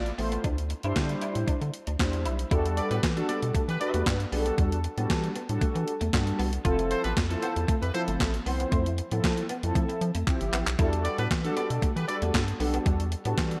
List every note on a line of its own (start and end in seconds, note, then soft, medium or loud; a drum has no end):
0.00 0.12 A1 loud
0.00 0.11 A3 medium
0.00 0.11 E4 medium
0.00 0.11 F4 medium
0.00 0.11 D5 loud
0.06 closed hi-hat medium
0.18 0.38 A1 medium
0.18 0.44 A3 medium
0.18 0.30 B3 medium
0.18 0.44 E4 medium
0.18 0.44 F4 medium
0.18 0.45 C5 loud
0.18 open hi-hat medium
0.32 0.42 B3 medium
0.32 closed hi-hat medium
0.44 0.74 D2 loud
0.44 0.56 D4 medium
0.44 kick loud
0.44 closed hi-hat medium
0.58 closed hi-hat medium
0.70 muted clean electric guitar stroke soft
0.70 closed hi-hat medium
0.83 0.93 G2 medium
0.83 1.54 G3 loud
0.83 1.54 D4 medium
0.83 1.55 E4 medium
0.83 0.94 E4 medium
0.83 1.55 C5 loud
0.83 closed hi-hat soft
0.96 1.15 D3 loud
0.96 kick loud
0.96 snare loud
0.96 clap medium
0.96 closed hi-hat loud
1.09 closed hi-hat medium
1.21 1.34 E4 medium
1.21 closed hi-hat medium
1.35 1.45 A2 loud
1.35 closed hi-hat medium
1.48 1.53 D3 soft
1.48 1.59 D4 medium
1.48 kick loud
1.48 closed hi-hat loud
1.61 1.71 D3 medium
1.61 muted clean electric guitar stroke soft
1.61 closed hi-hat soft
1.74 closed hi-hat medium
1.87 1.96 D2 medium
1.87 1.98 D4 medium
1.87 closed hi-hat medium
1.99 2.27 E2 medium
1.99 2.35 G3 medium
1.99 2.36 D4 medium
1.99 2.36 E4 medium
1.99 2.36 C5 medium
1.99 kick loud
1.99 snare loud
1.99 clap medium
1.99 closed hi-hat medium
2.13 closed hi-hat medium
2.25 2.45 B1 loud
2.25 2.37 E4 medium
2.25 closed hi-hat medium
2.39 closed hi-hat medium
2.51 2.81 E2 loud
2.51 2.96 G3 loud
2.51 2.96 D4 medium
2.51 2.63 E4 medium
2.51 2.96 F#4 loud
2.51 2.96 A4 loud
2.51 kick loud
2.51 closed hi-hat medium
2.66 closed hi-hat medium
2.77 2.88 A4 medium
2.77 2.88 B4 medium
2.77 2.88 D5 loud
2.77 muted clean electric guitar stroke soft
2.77 closed hi-hat medium
2.91 3.00 A2 loud
2.91 3.01 B3 medium
2.91 3.01 G4 medium
2.91 3.01 B4 medium
2.91 closed hi-hat medium
3.03 3.22 E3 loud
3.03 kick loud
3.03 snare loud
3.03 clap medium
3.03 closed hi-hat loud
3.16 3.60 G3 medium
3.16 3.60 D4 medium
3.16 3.27 D4 medium
3.16 3.26 F#4 medium
3.16 3.61 F#4 medium
3.16 3.27 A4 medium
3.16 3.61 A4 loud
3.16 closed hi-hat medium
3.29 3.40 B3 medium
3.29 3.40 A4 medium
3.29 3.40 B4 medium
3.29 3.40 D5 medium
3.29 closed hi-hat medium
3.42 3.52 B2 medium
3.42 closed hi-hat medium
3.55 3.60 E3 medium
3.55 3.66 A3 medium
3.55 kick loud
3.55 closed hi-hat loud
3.68 3.77 E3 medium
3.68 3.78 B3 medium
3.68 3.78 G4 medium
3.68 3.78 B4 medium
3.68 closed hi-hat soft
3.80 4.16 G3 medium
3.80 4.17 D4 medium
3.80 4.17 F#4 medium
3.80 3.92 A4 medium
3.80 3.92 B4 medium
3.80 4.17 B4 loud
3.80 3.92 D5 medium
3.80 muted clean electric guitar stroke soft
3.80 closed hi-hat medium
3.94 4.03 E2 medium
3.94 4.04 A3 medium
3.94 closed hi-hat medium
4.06 4.26 G2 loud
4.06 muted clean electric guitar stroke soft
4.06 kick loud
4.06 snare loud
4.06 clap loud
4.06 closed hi-hat loud
4.20 closed hi-hat medium
4.32 4.51 B1 medium
4.32 4.77 G3 loud
4.32 4.44 B3 medium
4.32 4.77 D4 medium
4.32 4.77 F#4 medium
4.32 4.39 G#4 medium
4.32 open hi-hat medium
4.39 4.80 A4 loud
4.46 4.56 B3 medium
4.46 closed hi-hat medium
4.58 4.87 E2 loud
4.58 4.70 G3 medium
4.58 kick loud
4.58 closed hi-hat medium
4.72 closed hi-hat medium
4.84 muted clean electric guitar stroke soft
4.84 closed hi-hat medium
4.97 5.07 A2 medium
4.97 5.32 G3 medium
4.97 5.08 B3 medium
4.97 5.33 D4 medium
4.97 5.33 F#4 medium
4.97 5.33 A4 loud
4.97 closed hi-hat soft
5.10 5.29 E3 loud
5.10 kick loud
5.10 snare loud
5.10 clap loud
5.10 closed hi-hat loud
5.24 closed hi-hat medium
5.36 5.47 B3 medium
5.36 closed hi-hat medium
5.49 5.58 A2 loud
5.49 5.93 G3 medium
5.49 5.93 D4 medium
5.49 5.93 F#4 medium
5.49 5.93 A4 loud
5.49 closed hi-hat medium
5.61 5.67 E3 soft
5.61 5.73 A3 medium
5.61 kick loud
5.61 closed hi-hat loud
5.75 5.84 E3 loud
5.75 muted clean electric guitar stroke soft
5.75 closed hi-hat medium
5.88 closed hi-hat medium
6.01 6.10 E2 medium
6.01 6.11 A3 medium
6.01 closed hi-hat medium
6.13 6.33 G2 medium
6.13 6.49 G3 medium
6.13 6.49 D4 medium
6.13 6.49 F#4 medium
6.13 6.50 A4 medium
6.13 kick loud
6.13 snare loud
6.13 clap medium
6.13 closed hi-hat loud
6.27 closed hi-hat medium
6.39 6.58 C2 medium
6.39 6.50 B3 medium
6.39 open hi-hat medium
6.53 closed hi-hat medium
6.65 6.94 F1 loud
6.65 7.10 F3 loud
6.65 7.10 C4 medium
6.65 7.10 E4 medium
6.65 6.76 F4 medium
6.65 7.10 A4 loud
6.65 kick loud
6.65 closed hi-hat medium
6.79 closed hi-hat medium
6.91 7.02 F4 medium
6.91 7.02 A4 medium
6.91 7.02 C5 loud
6.91 muted clean electric guitar stroke soft
6.91 closed hi-hat medium
7.04 7.14 A1 loud
7.04 7.15 B3 medium
7.04 7.14 E4 medium
7.04 7.14 G4 medium
7.04 7.14 B4 medium
7.04 closed hi-hat soft
7.17 7.36 F2 loud
7.17 kick loud
7.17 snare loud
7.17 clap loud
7.17 closed hi-hat loud
7.30 7.74 F3 medium
7.30 7.40 A3 medium
7.30 7.74 C4 medium
7.30 7.74 E4 medium
7.30 7.40 F4 medium
7.30 7.40 A4 medium
7.30 7.75 A4 loud
7.30 closed hi-hat medium
7.42 7.54 B3 medium
7.42 7.54 F4 medium
7.42 7.53 A4 medium
7.42 7.54 C5 medium
7.42 closed hi-hat medium
7.56 7.65 E2 loud
7.56 closed hi-hat medium
7.68 7.74 F2 soft
7.68 7.80 A3 medium
7.68 kick loud
7.68 closed hi-hat loud
7.82 7.91 F2 loud
7.82 7.92 E4 medium
7.82 7.92 G4 medium
7.82 7.92 B4 medium
7.82 closed hi-hat medium
7.94 8.30 F3 loud
7.94 8.30 C4 medium
7.94 8.31 E4 medium
7.94 8.03 F4 medium
7.94 8.02 A4 medium
7.94 8.31 A4 loud
7.94 8.02 C5 medium
7.94 muted clean electric guitar stroke soft
7.94 closed hi-hat medium
8.08 8.17 G1 medium
8.08 8.18 A3 medium
8.08 closed hi-hat medium
8.20 8.39 A1 loud
8.20 muted clean electric guitar stroke soft
8.20 kick loud
8.20 snare loud
8.20 clap medium
8.20 closed hi-hat loud
8.34 closed hi-hat medium
8.46 8.65 C2 medium
8.46 8.91 F3 medium
8.46 8.58 B3 medium
8.46 8.91 C4 medium
8.46 8.91 E4 medium
8.46 8.91 C5 loud
8.46 open hi-hat medium
8.60 8.70 B3 medium
8.60 closed hi-hat medium
8.72 9.01 F2 loud
8.72 8.84 A3 medium
8.72 kick loud
8.72 closed hi-hat medium
8.86 closed hi-hat medium
8.98 muted clean electric guitar stroke soft
8.98 closed hi-hat medium
9.11 9.21 A2 medium
9.11 9.46 F3 medium
9.11 9.22 B3 medium
9.11 9.47 C4 medium
9.11 9.47 E4 medium
9.11 9.47 A4 loud
9.11 closed hi-hat medium
9.24 9.43 F3 loud
9.24 kick loud
9.24 snare loud
9.24 clap medium
9.24 closed hi-hat loud
9.37 closed hi-hat medium
9.49 9.61 B3 medium
9.49 closed hi-hat medium
9.63 9.72 F2 loud
9.63 10.07 F3 medium
9.63 10.07 C4 medium
9.63 10.07 E4 medium
9.63 10.07 A4 loud
9.63 closed hi-hat medium
9.75 9.86 F3 loud
9.75 9.87 A3 medium
9.75 kick loud
9.75 closed hi-hat loud
9.89 muted clean electric guitar stroke medium
9.89 closed hi-hat soft
10.01 10.11 F3 loud
10.01 closed hi-hat medium
10.15 10.24 F2 medium
10.15 10.25 A3 medium
10.15 closed hi-hat medium
10.27 10.63 F3 medium
10.27 10.63 C4 medium
10.27 10.63 E4 medium
10.27 10.63 G4 loud
10.27 kick loud
10.27 clap medium
10.27 closed hi-hat medium
10.41 10.50 G1 medium
10.41 closed hi-hat medium
10.53 10.63 A1 medium
10.53 10.64 B3 medium
10.53 clap medium
10.53 closed hi-hat medium
10.67 10.76 B1 medium
10.67 clap medium
10.67 closed hi-hat medium
10.79 11.08 E2 loud
10.79 11.24 G3 loud
10.79 11.24 D4 loud
10.79 10.90 E4 medium
10.79 11.24 F#4 medium
10.79 11.24 A4 loud
10.79 kick loud
10.79 closed hi-hat medium
10.93 closed hi-hat medium
11.05 11.16 A4 medium
11.05 11.16 B4 medium
11.05 11.16 D5 medium
11.05 muted clean electric guitar stroke soft
11.05 closed hi-hat medium
11.18 11.27 A2 loud
11.18 11.29 B3 medium
11.18 11.28 B3 medium
11.18 11.28 G4 medium
11.18 11.28 B4 medium
11.18 closed hi-hat soft
11.31 11.50 E3 loud
11.31 kick loud
11.31 snare loud
11.31 clap loud
11.31 closed hi-hat loud
11.44 11.50 F#3 medium
11.44 11.88 D4 medium
11.44 11.54 D4 medium
11.44 11.54 F#4 medium
11.44 11.88 F#4 medium
11.44 11.54 A4 medium
11.44 11.88 A4 loud
11.44 closed hi-hat medium
11.50 11.91 G3 medium
11.57 11.68 B3 medium
11.57 11.68 A4 medium
11.57 11.68 B4 medium
11.57 11.68 D5 medium
11.57 closed hi-hat medium
11.70 11.79 B2 loud
11.70 closed hi-hat medium
11.82 11.88 E3 soft
11.82 11.94 A3 medium
11.82 kick loud
11.82 closed hi-hat loud
11.96 12.05 E3 medium
11.96 12.06 B3 medium
11.96 12.06 G4 medium
11.96 12.06 B4 medium
11.96 closed hi-hat medium
12.08 12.44 G3 medium
12.08 12.44 D4 medium
12.08 12.44 F#4 medium
12.08 12.16 A4 medium
12.08 12.44 A4 loud
12.08 12.16 B4 medium
12.08 12.16 D5 medium
12.08 muted clean electric guitar stroke soft
12.08 closed hi-hat medium
12.22 12.31 E2 loud
12.22 12.32 A3 medium
12.22 closed hi-hat medium
12.34 12.53 G2 medium
12.34 muted clean electric guitar stroke soft
12.34 kick loud
12.34 snare loud
12.34 clap medium
12.34 closed hi-hat medium
12.48 closed hi-hat medium
12.60 12.79 B1 medium
12.60 13.05 G3 medium
12.60 12.71 B3 medium
12.60 13.05 D4 medium
12.60 13.05 F#4 medium
12.60 13.05 A4 loud
12.60 open hi-hat medium
12.74 12.84 B3 medium
12.74 closed hi-hat medium
12.86 13.15 E2 loud
12.86 12.97 G3 medium
12.86 kick loud
12.86 closed hi-hat medium
13.00 closed hi-hat medium
13.12 muted clean electric guitar stroke soft
13.12 closed hi-hat medium
13.25 13.34 A2 loud
13.25 13.60 G3 medium
13.25 13.36 B3 medium
13.25 13.60 D4 medium
13.25 13.60 F#4 medium
13.25 13.60 A4 medium
13.25 closed hi-hat medium
13.38 13.57 E3 loud
13.38 kick loud
13.38 snare loud
13.38 clap loud
13.38 closed hi-hat loud
13.51 closed hi-hat medium